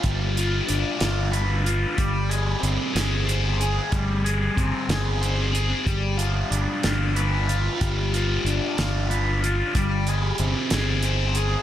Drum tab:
HH |xxxxxx|xxxxxx|xxxxxx|xxxxxx|
SD |---o--|---o--|---o--|---o--|
BD |o-----|o-----|o-o---|o-----|

HH |xxxxxx|xxxxxx|
SD |---o--|---o--|
BD |o-----|o-----|